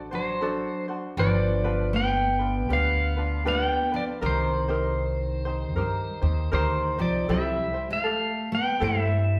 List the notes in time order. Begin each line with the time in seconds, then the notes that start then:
Already playing: A1 D4 F#4 A4
0.11 F#3 D4 F#4 C5
0.41 D4 F#4 A4 C5
0.88 D4 F#4 C5
1.17 G1 F3 D4 F4 G4 B4 D5
1.64 D4 F4 G4 B4
1.93 B3 G5
2.39 D4 F4 B4
2.69 D2 B3 D4 F4 G4 B4
2.73 F5
3.17 D4 F4 B4
3.45 A#3 D4 F4 G4 B4 F#5
3.64 B3 G5
3.92 F3 D4 F4 B4
3.96 D5
4.21 C2 D#3 D#4 G4 A#4 C5
4.26 C5
4.68 D#4 G4 A#4 C5
5.45 D#4 G4 C5
5.76 G2 D#4 G4 A#4 C5
6.22 D#2 D#4 G4 C5
6.51 D2 D#3 D#4 G4 A#4 C5
6.98 C2 F3 D#4 G4 C5 D5
7.28 C2 G3 E4 G4 A4 C5 E5
7.74 E4 G4 C5
7.90 A3 F5
8.04 G4 A4
8.52 B3 G5
8.80 G2 G3 E4 G4 A4 C5
8.84 E5